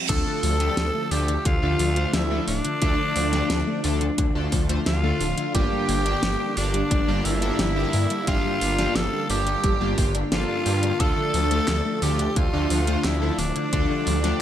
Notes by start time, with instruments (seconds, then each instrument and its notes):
0.09 detuned saw bass D2, clean electric guitar D3, analog polysynth D3 A3 D4 F4 A4, analog synth pad D3 F3 A3 D4, tenor saxophone A4, string machine A4, kick, closed hi-hat, crash
0.26 clean electric guitar D3
0.43 detuned saw bass D2, clean electric guitar F3, open hi-hat
0.60 analog polysynth D3 A3 D4 F4 G4, clean electric guitar A3, closed hi-hat
0.77 detuned saw bass D2, clean electric guitar D4, snare, closed hi-hat
0.95 clean electric guitar A3
1.11 detuned saw bass D2, clean electric guitar D3, analog polysynth D3 A3 D4 F4 A4, tenor saxophone G4, string machine G4, open hi-hat
1.28 clean electric guitar D3, closed hi-hat
1.45 detuned saw bass D2, clean electric guitar D3, string machine F4, tenor saxophone F4, kick, closed hi-hat
1.63 detuned saw bass D2, analog polysynth D3 A3 D4 F4 A4, clean electric guitar D3
1.79 detuned saw bass D2, clean electric guitar F3, open hi-hat
1.96 analog polysynth D3 A3 D4 F4 C5, clean electric guitar A3, closed hi-hat
2.13 detuned saw bass D2, clean electric guitar D4, tenor saxophone E4, string machine E4, snare, closed hi-hat
2.31 analog polysynth D3 A3 D4 F4 A4, clean electric guitar A3
2.48 detuned saw bass D1, clean electric guitar D3, tenor saxophone D4, string machine D4, open hi-hat
2.65 clean electric guitar D3, closed hi-hat
2.82 detuned saw bass D2, clean electric guitar D3, analog polysynth D3 A3 D4 F4 A4, kick, closed hi-hat
2.99 clean electric guitar D3
3.16 detuned saw bass D2, clean electric guitar F3, open hi-hat
3.33 analog polysynth D3 A3 D4 F4 G4, clean electric guitar A3, snare, closed hi-hat
3.50 detuned saw bass D2, clean electric guitar D4, snare, closed hi-hat
3.67 clean electric guitar A3
3.84 detuned saw bass D2, clean electric guitar D3, analog polysynth D3 A3 D4 F4 A4, open hi-hat
4.01 clean electric guitar D3, closed hi-hat
4.18 detuned saw bass D2, clean electric guitar D3, kick, closed hi-hat
4.35 detuned saw bass D2, clean electric guitar D3, analog polysynth D3 A3 D4 F4 A4
4.52 detuned saw bass D2, clean electric guitar F3, kick, open hi-hat
4.69 analog polysynth D3 A3 D4 F4 C5, clean electric guitar A3, closed hi-hat
4.86 detuned saw bass D2, clean electric guitar D4, tenor saxophone F4, string machine F4, snare, closed hi-hat
5.03 analog polysynth D3 A3 D4 F4 A4, clean electric guitar A3
5.20 detuned saw bass D1, clean electric guitar D3, open hi-hat
5.37 clean electric guitar D3, closed hi-hat
5.54 detuned saw bass G1, analog polysynth G2 A#3 D4 F4 G4, clean electric guitar G3, analog synth pad G3 A#3, tenor saxophone G4, string machine G4, kick, closed hi-hat
5.71 clean electric guitar G3
5.88 detuned saw bass G1, clean electric guitar A#3, open hi-hat
6.06 analog polysynth G2 A#3 D4 F4 G4, clean electric guitar D4, closed hi-hat
6.23 detuned saw bass G1, clean electric guitar G4, snare, closed hi-hat
6.40 clean electric guitar D4
6.57 detuned saw bass G1, analog polysynth G2 A#3 D4 F4 G4, clean electric guitar G3, tenor saxophone D4, string machine D4, open hi-hat
6.74 clean electric guitar G3, closed hi-hat
6.91 detuned saw bass G1, clean electric guitar G3, kick, closed hi-hat
7.08 detuned saw bass G1, analog polysynth G2 A#3 D4 F4 G4, clean electric guitar G3
7.25 detuned saw bass G1, clean electric guitar A#3, tenor saxophone E4, string machine E4, open hi-hat
7.42 analog polysynth G2 A#3 D4 F4 A4, clean electric guitar D4, closed hi-hat
7.59 detuned saw bass G1, clean electric guitar G4, snare, closed hi-hat
7.76 analog polysynth G2 A#3 D4 F4 G4, clean electric guitar D4
7.93 detuned saw bass G2, clean electric guitar G3, open hi-hat
8.10 clean electric guitar G3, closed hi-hat
8.27 detuned saw bass G1, analog polysynth G2 A#3 D4 F4 G4, clean electric guitar G3, tenor saxophone F4, string machine F4, kick, closed hi-hat
8.45 clean electric guitar G3
8.61 detuned saw bass G1, clean electric guitar A#3, open hi-hat
8.79 analog polysynth G2 A#3 D4 F4 G4, clean electric guitar D4, snare, closed hi-hat
8.96 detuned saw bass G1, clean electric guitar G4, tenor saxophone A4, string machine A4, snare, closed hi-hat
9.13 clean electric guitar D4
9.30 detuned saw bass G1, analog polysynth G2 A#3 D4 F4 G4, clean electric guitar G3, string machine G4, tenor saxophone G4, open hi-hat
9.47 clean electric guitar G3, closed hi-hat
9.64 detuned saw bass G1, clean electric guitar G3, kick, closed hi-hat
9.81 detuned saw bass G1, analog polysynth G2 A#3 D4 F4 G4, clean electric guitar G3
9.98 detuned saw bass G1, clean electric guitar A#3, kick, open hi-hat
10.15 clean electric guitar D4, closed hi-hat
10.32 detuned saw bass G1, analog polysynth G2 A#3 D4 F4 A4, string machine F4, tenor saxophone F4, clean electric guitar G4, snare, closed hi-hat
10.49 clean electric guitar D4
10.66 detuned saw bass G2, clean electric guitar G3, analog polysynth A#3 D4 F4 G4, open hi-hat
10.83 clean electric guitar G3, closed hi-hat
11.00 detuned saw bass D2, analog polysynth D3 A3 D4 F4 A4, analog synth pad D3 F3 A3, clean electric guitar D3, tenor saxophone A4, string machine A4, kick, closed hi-hat
11.17 clean electric guitar D3
11.34 detuned saw bass D2, clean electric guitar F3, open hi-hat
11.51 analog polysynth D3 A3 D4 F4 G4, clean electric guitar A3, closed hi-hat
11.68 detuned saw bass D2, clean electric guitar D4, snare, clap, closed hi-hat
11.85 clean electric guitar A3
12.02 detuned saw bass D2, analog polysynth D3 A3 D4 F4 A4, clean electric guitar D3, tenor saxophone G4, string machine G4, open hi-hat
12.19 clean electric guitar D3, closed hi-hat
12.36 detuned saw bass D2, clean electric guitar D3, tenor saxophone F4, string machine F4, kick, closed hi-hat
12.53 detuned saw bass D2, analog polysynth D3 A3 D4 F4 A4, clean electric guitar D3
12.70 detuned saw bass D2, clean electric guitar F3, open hi-hat
12.87 analog polysynth D3 A3 D4 F4 C5, clean electric guitar A3, closed hi-hat
13.04 detuned saw bass D2, clean electric guitar D4, tenor saxophone E4, string machine E4, snare, clap, closed hi-hat
13.22 analog polysynth D3 A3 D4 F4 A4, clean electric guitar A3
13.39 detuned saw bass D1, clean electric guitar D3, tenor saxophone D4, string machine D4, open hi-hat
13.56 clean electric guitar D3, closed hi-hat
13.73 detuned saw bass D2, analog polysynth D3 A3 D4 F4 A4, clean electric guitar D3, analog synth pad G3, kick, closed hi-hat
13.90 clean electric guitar D3
14.07 detuned saw bass D2, clean electric guitar F3, open hi-hat
14.24 analog polysynth D3 A3 D4 F4 G4, clean electric guitar A3, snare, closed hi-hat